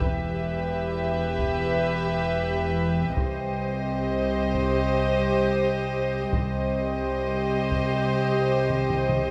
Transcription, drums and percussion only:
0, 0, Header, 1, 2, 480
1, 0, Start_track
1, 0, Tempo, 789474
1, 10, Time_signature, 4, 2, 24, 8
1, 5659, End_track
2, 0, Start_track
2, 0, Title_t, "Taiko and cinematic ensemble drums"
2, 8, Note_on_c, 9, 41, 75
2, 69, Note_off_c, 9, 41, 0
2, 845, Note_on_c, 9, 41, 61
2, 906, Note_off_c, 9, 41, 0
2, 1927, Note_on_c, 9, 41, 74
2, 1988, Note_off_c, 9, 41, 0
2, 2765, Note_on_c, 9, 41, 65
2, 2826, Note_off_c, 9, 41, 0
2, 3848, Note_on_c, 9, 41, 74
2, 3909, Note_off_c, 9, 41, 0
2, 4690, Note_on_c, 9, 41, 66
2, 4751, Note_off_c, 9, 41, 0
2, 5290, Note_on_c, 9, 47, 62
2, 5350, Note_off_c, 9, 47, 0
2, 5410, Note_on_c, 9, 47, 73
2, 5471, Note_off_c, 9, 47, 0
2, 5528, Note_on_c, 9, 47, 78
2, 5589, Note_off_c, 9, 47, 0
2, 5659, End_track
0, 0, End_of_file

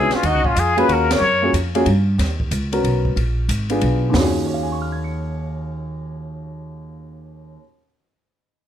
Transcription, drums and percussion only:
0, 0, Header, 1, 2, 480
1, 0, Start_track
1, 0, Key_signature, -6, "minor"
1, 0, Tempo, 325556
1, 351, Time_signature, 3, 2, 24, 8
1, 12790, End_track
2, 0, Start_track
2, 0, Title_t, "Drums"
2, 158, Note_on_c, 9, 38, 45
2, 158, Note_on_c, 9, 51, 46
2, 305, Note_off_c, 9, 38, 0
2, 305, Note_off_c, 9, 51, 0
2, 342, Note_on_c, 9, 51, 63
2, 346, Note_on_c, 9, 36, 21
2, 490, Note_off_c, 9, 51, 0
2, 493, Note_off_c, 9, 36, 0
2, 655, Note_on_c, 9, 36, 57
2, 803, Note_off_c, 9, 36, 0
2, 831, Note_on_c, 9, 36, 21
2, 832, Note_on_c, 9, 44, 53
2, 832, Note_on_c, 9, 51, 69
2, 979, Note_off_c, 9, 36, 0
2, 980, Note_off_c, 9, 44, 0
2, 980, Note_off_c, 9, 51, 0
2, 1144, Note_on_c, 9, 51, 50
2, 1292, Note_off_c, 9, 51, 0
2, 1314, Note_on_c, 9, 36, 23
2, 1315, Note_on_c, 9, 51, 54
2, 1461, Note_off_c, 9, 36, 0
2, 1462, Note_off_c, 9, 51, 0
2, 1632, Note_on_c, 9, 38, 79
2, 1632, Note_on_c, 9, 51, 71
2, 1779, Note_off_c, 9, 38, 0
2, 1779, Note_off_c, 9, 51, 0
2, 2269, Note_on_c, 9, 36, 20
2, 2270, Note_on_c, 9, 44, 53
2, 2270, Note_on_c, 9, 51, 65
2, 2416, Note_off_c, 9, 36, 0
2, 2418, Note_off_c, 9, 44, 0
2, 2418, Note_off_c, 9, 51, 0
2, 2578, Note_on_c, 9, 51, 52
2, 2726, Note_off_c, 9, 51, 0
2, 2742, Note_on_c, 9, 51, 58
2, 2746, Note_on_c, 9, 36, 22
2, 2890, Note_off_c, 9, 51, 0
2, 2893, Note_off_c, 9, 36, 0
2, 3230, Note_on_c, 9, 36, 23
2, 3233, Note_on_c, 9, 38, 40
2, 3233, Note_on_c, 9, 51, 65
2, 3377, Note_off_c, 9, 36, 0
2, 3380, Note_off_c, 9, 38, 0
2, 3380, Note_off_c, 9, 51, 0
2, 3537, Note_on_c, 9, 36, 53
2, 3684, Note_off_c, 9, 36, 0
2, 3706, Note_on_c, 9, 44, 57
2, 3706, Note_on_c, 9, 51, 64
2, 3708, Note_on_c, 9, 36, 27
2, 3853, Note_off_c, 9, 44, 0
2, 3853, Note_off_c, 9, 51, 0
2, 3855, Note_off_c, 9, 36, 0
2, 4018, Note_on_c, 9, 51, 54
2, 4165, Note_off_c, 9, 51, 0
2, 4189, Note_on_c, 9, 36, 23
2, 4194, Note_on_c, 9, 51, 54
2, 4336, Note_off_c, 9, 36, 0
2, 4341, Note_off_c, 9, 51, 0
2, 4498, Note_on_c, 9, 36, 52
2, 4645, Note_off_c, 9, 36, 0
2, 4669, Note_on_c, 9, 36, 22
2, 4673, Note_on_c, 9, 51, 56
2, 4816, Note_off_c, 9, 36, 0
2, 4821, Note_off_c, 9, 51, 0
2, 5146, Note_on_c, 9, 44, 61
2, 5146, Note_on_c, 9, 51, 68
2, 5147, Note_on_c, 9, 36, 26
2, 5293, Note_off_c, 9, 44, 0
2, 5293, Note_off_c, 9, 51, 0
2, 5294, Note_off_c, 9, 36, 0
2, 5448, Note_on_c, 9, 51, 53
2, 5596, Note_off_c, 9, 51, 0
2, 5622, Note_on_c, 9, 51, 61
2, 5627, Note_on_c, 9, 36, 22
2, 5770, Note_off_c, 9, 51, 0
2, 5775, Note_off_c, 9, 36, 0
2, 6103, Note_on_c, 9, 38, 98
2, 6103, Note_on_c, 9, 43, 89
2, 6103, Note_on_c, 9, 46, 78
2, 6250, Note_off_c, 9, 38, 0
2, 6250, Note_off_c, 9, 43, 0
2, 6250, Note_off_c, 9, 46, 0
2, 12790, End_track
0, 0, End_of_file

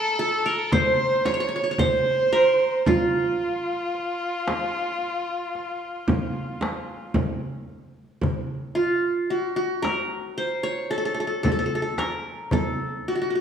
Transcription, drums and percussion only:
0, 0, Header, 1, 3, 480
1, 0, Start_track
1, 0, Tempo, 1073345
1, 1283, Time_signature, 10, 3, 24, 8
1, 5996, End_track
2, 0, Start_track
2, 0, Title_t, "Darbuka"
2, 87, Note_on_c, 9, 62, 24
2, 132, Note_off_c, 9, 62, 0
2, 326, Note_on_c, 9, 64, 88
2, 371, Note_off_c, 9, 64, 0
2, 801, Note_on_c, 9, 64, 84
2, 846, Note_off_c, 9, 64, 0
2, 1044, Note_on_c, 9, 62, 25
2, 1088, Note_off_c, 9, 62, 0
2, 1284, Note_on_c, 9, 64, 80
2, 1329, Note_off_c, 9, 64, 0
2, 1523, Note_on_c, 9, 62, 23
2, 1568, Note_off_c, 9, 62, 0
2, 1765, Note_on_c, 9, 62, 24
2, 1810, Note_off_c, 9, 62, 0
2, 2001, Note_on_c, 9, 63, 70
2, 2046, Note_off_c, 9, 63, 0
2, 2245, Note_on_c, 9, 62, 24
2, 2290, Note_off_c, 9, 62, 0
2, 2483, Note_on_c, 9, 62, 25
2, 2527, Note_off_c, 9, 62, 0
2, 2725, Note_on_c, 9, 64, 81
2, 2770, Note_off_c, 9, 64, 0
2, 2963, Note_on_c, 9, 63, 66
2, 3007, Note_off_c, 9, 63, 0
2, 3085, Note_on_c, 9, 62, 25
2, 3130, Note_off_c, 9, 62, 0
2, 3202, Note_on_c, 9, 64, 84
2, 3246, Note_off_c, 9, 64, 0
2, 3682, Note_on_c, 9, 64, 84
2, 3727, Note_off_c, 9, 64, 0
2, 4403, Note_on_c, 9, 63, 62
2, 4448, Note_off_c, 9, 63, 0
2, 4642, Note_on_c, 9, 62, 26
2, 4687, Note_off_c, 9, 62, 0
2, 4883, Note_on_c, 9, 62, 25
2, 4927, Note_off_c, 9, 62, 0
2, 5118, Note_on_c, 9, 64, 83
2, 5163, Note_off_c, 9, 64, 0
2, 5359, Note_on_c, 9, 63, 64
2, 5403, Note_off_c, 9, 63, 0
2, 5596, Note_on_c, 9, 64, 85
2, 5640, Note_off_c, 9, 64, 0
2, 5996, End_track
3, 0, Start_track
3, 0, Title_t, "Frame drum"
3, 323, Note_on_c, 9, 64, 88
3, 368, Note_off_c, 9, 64, 0
3, 561, Note_on_c, 9, 64, 68
3, 606, Note_off_c, 9, 64, 0
3, 798, Note_on_c, 9, 64, 91
3, 842, Note_off_c, 9, 64, 0
3, 1281, Note_on_c, 9, 64, 92
3, 1325, Note_off_c, 9, 64, 0
3, 2002, Note_on_c, 9, 64, 69
3, 2047, Note_off_c, 9, 64, 0
3, 2717, Note_on_c, 9, 64, 83
3, 2762, Note_off_c, 9, 64, 0
3, 2956, Note_on_c, 9, 64, 69
3, 3001, Note_off_c, 9, 64, 0
3, 3194, Note_on_c, 9, 64, 86
3, 3239, Note_off_c, 9, 64, 0
3, 3674, Note_on_c, 9, 64, 75
3, 3718, Note_off_c, 9, 64, 0
3, 4401, Note_on_c, 9, 64, 63
3, 4446, Note_off_c, 9, 64, 0
3, 5122, Note_on_c, 9, 64, 88
3, 5167, Note_off_c, 9, 64, 0
3, 5357, Note_on_c, 9, 64, 64
3, 5402, Note_off_c, 9, 64, 0
3, 5600, Note_on_c, 9, 64, 92
3, 5644, Note_off_c, 9, 64, 0
3, 5996, End_track
0, 0, End_of_file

